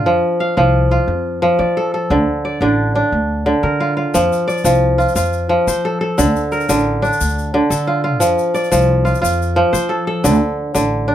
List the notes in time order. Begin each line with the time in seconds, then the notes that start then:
Already playing: D3 D4 F4
0.06 F2 F3
0.40 F5
0.57 C2 F3 F4
0.91 F4
1.08 F2
1.42 F3
1.59 F3 D5
1.77 A4
1.94 A4
2.10 D2 D3
2.45 D5
2.61 A1 D3 D4
2.95 D4
3.12 D2
3.46 D3
3.63 D3 A#4
3.80 F4
3.97 F4
4.14 F2 F3, shaker
4.33 shaker
4.48 D5, shaker
4.58 shaker
4.64 C2 F3, shaker
4.98 F4, shaker
5.08 shaker
5.16 F2 F4, shaker
5.25 shaker
5.33 shaker
5.49 F3
5.67 F3 C5, shaker
5.85 A4
6.01 A4
6.18 D2 D3, shaker
6.36 shaker
6.52 A#4, shaker
6.60 shaker
6.69 A1 D3, shaker
7.02 D4, shaker
7.13 shaker
7.21 D2, shaker
7.29 shaker
7.39 shaker
7.54 D3
7.70 D3 A4, shaker
7.87 F4
8.04 F4
8.20 F2 F3, shaker
8.38 shaker
8.54 D5, shaker
8.64 shaker
8.72 C2 F3, shaker
9.05 F4, shaker
9.15 shaker
9.22 F2 F4, shaker
9.42 shaker
9.56 F3
9.73 F3 C5, shaker
9.89 A4
10.07 A4
10.24 D2 D3, shaker
10.75 A1 D3, shaker
11.08 D4